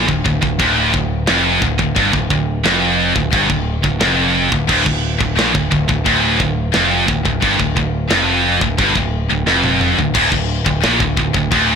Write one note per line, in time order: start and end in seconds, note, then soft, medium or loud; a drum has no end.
0.08 0.25 D1 medium
0.08 0.23 D2 medium
0.08 kick loud
0.25 0.42 D1 medium
0.25 0.41 D2 medium
0.25 kick medium
0.42 0.59 D1 medium
0.42 0.58 D2 medium
0.42 kick loud
0.59 0.91 D1 medium
0.59 0.91 D2 loud
0.59 kick loud
0.59 china medium
0.93 1.25 D1 medium
0.93 1.20 D2 medium
0.93 kick medium
1.27 1.60 F1 loud
1.27 1.61 F2 loud
1.27 snare loud
1.27 china medium
1.62 1.78 D1 medium
1.62 1.78 D2 medium
1.62 kick medium
1.79 1.95 D1 medium
1.79 1.95 D2 medium
1.79 kick medium
1.96 2.12 G1 medium
1.96 2.12 G2 loud
1.96 kick loud
1.96 china medium
2.13 2.29 D1 medium
2.13 2.30 D2 medium
2.13 kick medium
2.30 2.62 D1 medium
2.30 2.58 D2 medium
2.30 kick medium
2.64 3.12 F1 medium
2.64 3.14 F2 loud
2.64 snare loud
2.64 china medium
3.16 3.31 D1 medium
3.16 3.31 D2 medium
3.16 kick loud
3.32 3.49 G1 loud
3.32 3.48 G2 loud
3.32 kick loud
3.32 china medium
3.48 3.81 D1 medium
3.48 3.76 D2 medium
3.48 kick medium
3.84 4.00 D1 medium
3.84 4.00 D2 medium
3.84 kick medium
4.01 4.48 F1 loud
4.01 4.51 F2 loud
4.01 snare loud
4.01 china medium
4.52 4.68 D1 medium
4.52 4.66 D2 medium
4.52 kick medium
4.67 4.85 D1 medium
4.67 4.83 D2 loud
4.67 kick loud
4.67 crash loud
4.67 china medium
4.84 5.18 D1 medium
4.84 5.12 D2 medium
4.84 kick loud
5.19 5.36 D1 medium
5.19 5.36 D2 medium
5.19 kick medium
5.37 5.53 A#1 medium
5.37 5.53 A#2 loud
5.37 snare loud
5.37 china medium
5.53 5.71 D1 medium
5.53 5.70 D2 medium
5.53 kick loud
5.71 5.87 D1 medium
5.71 5.88 D2 medium
5.71 kick medium
5.89 6.04 D1 medium
5.89 6.04 D2 medium
5.89 kick medium
6.05 6.37 D1 loud
6.05 6.38 D2 loud
6.05 kick loud
6.05 china medium
6.39 6.72 D1 medium
6.39 6.66 D2 medium
6.39 kick loud
6.72 7.06 F1 medium
6.72 7.06 F2 loud
6.72 snare loud
6.72 china medium
7.07 7.24 D1 medium
7.07 7.24 D2 medium
7.07 kick medium
7.25 7.41 D1 medium
7.25 7.41 D2 medium
7.25 kick medium
7.42 7.58 G1 medium
7.42 7.58 G2 loud
7.42 kick loud
7.42 china medium
7.59 7.75 D1 medium
7.59 7.75 D2 medium
7.59 kick medium
7.76 8.08 D1 medium
7.76 8.03 D2 medium
7.76 kick medium
8.10 8.58 F1 medium
8.10 8.60 F2 loud
8.10 snare loud
8.10 china medium
8.61 8.77 D1 medium
8.61 8.79 D2 medium
8.61 kick medium
8.79 8.95 G1 loud
8.79 8.95 G2 loud
8.79 kick loud
8.79 china medium
8.95 9.27 D1 medium
8.95 9.23 D2 medium
8.95 kick medium
9.30 9.46 D1 medium
9.30 9.47 D2 medium
9.47 9.94 F1 loud
9.47 9.97 F2 loud
9.47 snare medium
9.64 high tom medium
9.81 mid tom medium
9.98 10.14 D1 medium
9.98 10.13 D2 medium
9.98 floor tom medium
10.14 10.31 D1 medium
10.14 10.31 D2 loud
10.14 kick loud
10.14 china medium
10.14 crash medium
10.32 10.64 D1 medium
10.32 10.60 D2 medium
10.32 kick medium
10.65 10.82 D1 medium
10.65 10.81 D2 medium
10.65 kick loud
10.82 11.00 A#1 medium
10.82 10.99 A#2 loud
10.82 snare loud
10.82 china medium
11.00 11.16 D1 medium
11.00 11.16 D2 medium
11.00 kick loud
11.17 11.34 D1 medium
11.17 11.32 D2 medium
11.17 kick medium
11.34 11.50 D1 medium
11.34 11.50 D2 medium
11.34 kick medium
11.51 11.75 D1 loud
11.51 11.75 D2 loud
11.51 kick loud
11.51 china medium